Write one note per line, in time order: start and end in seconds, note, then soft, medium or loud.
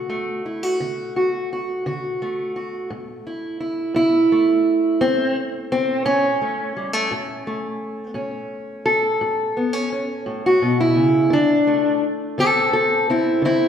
0.00 0.37 D3 medium
0.00 0.44 F#4 soft
0.10 2.22 A3 soft
0.46 0.63 E4 soft
0.63 1.15 F#4 soft
0.80 1.43 D3 medium
1.16 1.51 F#4 medium
1.53 1.85 F#4 medium
1.86 2.49 D3 medium
1.86 2.55 F#4 soft
2.22 4.31 A3 medium
2.56 2.87 F#4 soft
2.90 3.54 A2 medium
3.27 3.60 E4 medium
3.60 3.96 E4 soft
3.94 4.58 A2 medium
3.94 5.01 E4 loud
4.32 6.41 A3 soft
5.01 5.64 A2 medium
5.01 5.36 C4 loud
5.72 6.05 C4 medium
6.05 6.69 A2 medium
6.05 8.14 C#4 loud
6.41 6.76 A3 soft
6.77 6.93 G3 soft
6.93 7.11 A3 soft
7.11 7.75 A2 medium
7.47 11.29 A3 medium
8.14 8.79 A2 medium
8.14 9.56 C#4 soft
8.86 10.44 A4 medium
9.21 9.85 A2 medium
9.57 9.73 B3 soft
9.73 9.91 C#4 soft
9.92 11.29 C#4 soft
10.26 10.62 A2 medium
10.46 10.80 F#4 medium
10.62 10.95 B2 medium
10.80 11.33 E4 medium
10.96 11.32 C#3 medium
11.30 11.95 D3 medium
11.30 12.03 D4 loud
11.67 13.68 A3 soft
12.38 13.01 D3 medium
12.38 12.73 C4 medium
12.38 12.72 A4 medium
12.73 13.09 C4 medium
12.73 13.08 A4 medium
13.10 13.44 C4 medium
13.10 13.44 E4 medium
13.42 13.68 D3 medium
13.42 13.68 C4 medium
13.42 13.68 E4 loud